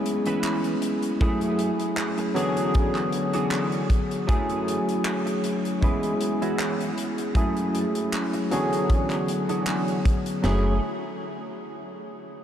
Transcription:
Already playing: tine electric piano G#3 B3 C#4 E4 G#4
0.06 closed hi-hat
0.26 clean electric guitar E3 C#4 E4 B4, closed hi-hat
0.44 clap, closed hi-hat
0.64 closed hi-hat
0.82 closed hi-hat
1.02 closed hi-hat
1.20 clean electric guitar F#2 A3 E4 G#4, tine electric piano F#3 A3 C#4 E4 G#4, kick, closed hi-hat
1.41 closed hi-hat
1.59 closed hi-hat
1.80 closed hi-hat
1.97 clap, closed hi-hat
2.18 muted clean electric guitar stroke, closed hi-hat
2.34 tine electric piano D3 F#3 B3 G#4 C#5, clean electric guitar E3 C#4 D4 F#4 G#4, closed hi-hat
2.57 closed hi-hat
2.74 kick, closed hi-hat
2.95 clap, closed hi-hat
3.13 closed hi-hat
3.33 clean electric guitar E3 C#4 D4 F#4 G#4, closed hi-hat
3.51 clap, closed hi-hat
3.72 closed hi-hat
3.90 kick, closed hi-hat
4.11 closed hi-hat
4.27 clean electric guitar F#2 A3 E4 G#4, tine electric piano F#3 A3 C#4 E4 G#4, kick, closed hi-hat
4.49 closed hi-hat
4.68 closed hi-hat
4.89 closed hi-hat
5.05 clap, closed hi-hat
5.26 muted clean electric guitar stroke, closed hi-hat
5.44 muted clean electric guitar stroke, closed hi-hat
5.65 closed hi-hat
5.81 clean electric guitar E3 C#4 E4 B4, tine electric piano G#3 B3 C#4 E4 G#4, kick, closed hi-hat
6.03 closed hi-hat
6.21 closed hi-hat
6.42 clean electric guitar E3 C#4 E4 F#4, closed hi-hat
6.59 clap, closed hi-hat
6.81 closed hi-hat
6.98 closed hi-hat
7.18 closed hi-hat
7.35 clean electric guitar F#2 A3 E4 G#4, tine electric piano F#3 A3 C#4 E4 G#4, kick, closed hi-hat
7.57 closed hi-hat
7.75 closed hi-hat
7.95 closed hi-hat
8.13 clap, closed hi-hat
8.33 muted clean electric guitar stroke, closed hi-hat
8.51 tine electric piano D3 F#3 B3 G#4 C#5, clean electric guitar E3 C#4 D4 F#4 G#4, closed hi-hat
8.73 closed hi-hat
8.90 kick, closed hi-hat
9.10 clap, closed hi-hat
9.28 closed hi-hat
9.49 clean electric guitar E3 C#4 D4 F#4 G#4, closed hi-hat
9.67 clap, closed hi-hat
9.88 closed hi-hat
10.05 kick, closed hi-hat
10.26 closed hi-hat
10.42 fm bass F#1, tine electric piano F#3 A3 C#4 E4, clean electric guitar A3 E4 G#4, snare, ride bell
10.46 tine electric piano G#4

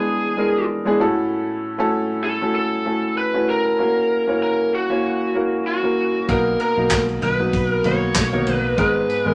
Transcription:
Already playing: grand piano E3 G#3 B3 D4 E4 G#4, lead electric guitar G#4
0.37 grand piano G#3 B3 D4 E4 A#4
0.85 grand piano G#3 B3 D4 E4 G#4
0.99 grand piano A2 A3 C#4 E4 F#4 A4
1.78 grand piano A3 C#4 E4 F#4 A4
2.24 lead electric guitar A4
2.41 grand piano A3 C#4 E4 F#4 A4
2.55 lead electric guitar A4
2.85 grand piano A3 C#4 E4 F#4 A4
3.18 lead electric guitar B4
3.34 grand piano A3 C#4 E4 F#4 B4
3.49 lead electric guitar A#4
3.78 grand piano A#3 C#4 E4 F#4 A#4
4.27 grand piano A#3 C#4 E4 F#4 C#5
4.43 lead electric guitar A#4
4.75 lead electric guitar F#4
4.90 grand piano A#3 C#4 E4 F#4 C#5
5.35 grand piano A#3 C#4 E4 F#4 A#4
5.67 lead electric guitar F#4
5.83 grand piano A#3 C#4 E4 F#4 A#4
6.28 picked electric bass B1, grand piano B2 A#3 B3 D#4 F#4 A#4, lead electric guitar A#4, kick, ride
6.60 lead electric guitar A#4, ride
6.77 picked electric bass B1, grand piano A#3 B3 D#4 F#4 A#4
6.90 picked electric bass B1, lead electric guitar A#4, kick, snare, clap, ride
7.09 ride
7.21 picked electric bass B1, lead electric guitar B4, floor tom, ride
7.39 grand piano F#3 B3 D#4 F#4 B4
7.53 picked electric bass B1, kick, ride
7.68 lead electric guitar A#4
7.84 picked electric bass B1, grand piano A#3 B3 D#4 F#4 A#4, lead electric guitar C#5, floor tom, ride
8.15 picked electric bass B1, kick, snare, clap, ride
8.32 grand piano A#3 B3 D#4 F#4 A#4, floor tom
8.46 picked electric bass B1, floor tom, ride
8.53 lead electric guitar B4
8.77 picked electric bass G#1, grand piano G#2 G#3 B3 D#4 G#4 B4, lead electric guitar B4, kick, ride
9.10 ride
9.24 picked electric bass G#1, grand piano G#3 B3 D#4 G#4 B4, lead electric guitar A#4

